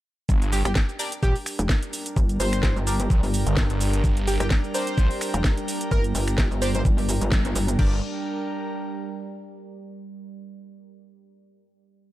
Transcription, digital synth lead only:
0.52 G4
0.65 G4
1.23 G4
2.40 C5
4.27 G4
4.41 G4
4.74 C5
5.92 A#4
6.62 C5
6.75 C5

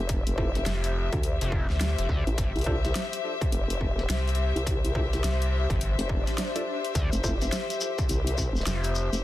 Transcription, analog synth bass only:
0.66 F1
1.42 F1
1.70 D2
1.99 F1
2.09 D2
2.38 G1
4.10 C2
5.24 C2
5.70 G1
6.95 D2
8.66 F1

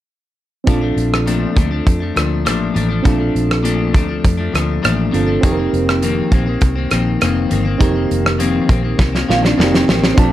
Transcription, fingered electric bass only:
0.68 A#1
0.97 A#1
1.57 D2
1.87 F2
2.16 D2
2.46 A1
2.76 A1
3.06 A#1
3.35 A#1
3.94 D2
4.24 F2
4.54 D2
4.85 A1
5.14 G1
5.43 F1
5.73 F1
6.32 A#1
6.62 C2
6.92 A#1
7.22 F1
7.52 G1
7.80 F1
8.11 F1
8.70 A#1
8.99 C2
9.29 A#1
9.59 F1
9.88 A1
10.18 A#1

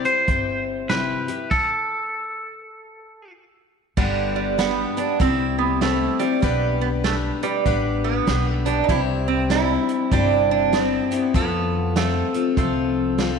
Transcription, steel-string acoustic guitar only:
0.05 E4 G4 C5
0.28 C4 E4 G4 C5
0.89 C3 C4 E4 G4
1.28 E4 G4
3.97 G2 D3 G3 B3 D4 G4
4.58 G3 B3 D4 G4
4.97 G3 B3 D4 G4
5.20 C3 G3 E4 G4
5.81 G3 C4 E4 G4
6.19 C4 E4 G4
6.42 B3 D4 G4 B4
7.04 B3 D4 G4 B4
7.43 D4 G4 B4
7.66 B3 D4 G4 B4
8.27 B3 D4 G4 B4
8.66 D4 G4 B4
8.89 C3 G3 C4 E4 G4
9.50 G3 C4 E4 G4
10.12 C3 G3 C4 E4 G4
10.72 G3 C4 E4 G4
11.11 C4 E4 G4
11.34 F3 F4 A4
11.96 F3 C4 F4 A4
12.34 C4 F4 A4
12.57 F3 C4 F4 A4
13.18 F3 C4 F4 A4

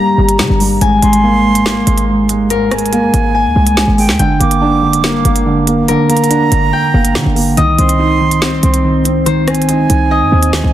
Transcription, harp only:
Already playing: G3 G4 A#5
0.81 G#5
1.66 A#3
2.50 A#4
3.35 G#5
4.19 G5
5.04 A#3
5.88 A#4
6.73 G5
7.57 D#5
8.42 C4
9.26 C5
10.11 D#5

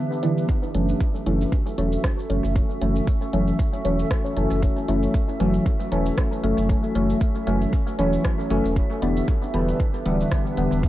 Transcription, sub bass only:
0.75 F#1
1.26 F#1
1.78 E1
2.30 F#1
2.44 F#1
2.82 F#1
3.33 F#1
3.85 E1
4.37 F#1
4.51 F#1
4.88 F#1
5.40 F#1
5.92 E1
6.43 F#1
6.58 F#1
6.95 F#1
7.47 F#1
7.99 E1
8.50 F#1
8.65 E1
9.02 E1
9.54 E1
10.06 D1
10.57 E1
10.72 E1

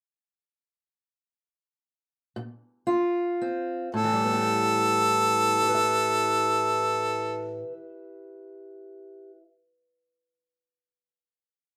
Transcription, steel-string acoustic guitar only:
2.36 A#2
2.87 F4
3.42 C4
3.94 A2
4.04 E3
4.13 G3
4.24 B3
4.33 G4
5.63 G4
5.69 B4
5.75 E5

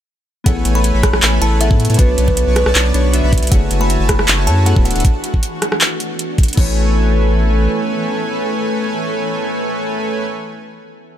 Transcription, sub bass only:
0.46 A1
0.65 A1
0.94 A1
1.13 A1
1.22 A1
1.42 A1
1.71 A2
1.90 A2
1.99 B1
2.18 B1
2.47 B1
2.66 B1
2.75 B1
2.94 B1
3.24 B1
3.43 B1
3.52 F#1
3.71 F#1
4.00 F#1
4.19 F#1
4.28 F#1
4.47 F#2
4.76 D1
4.95 D1
6.57 A1

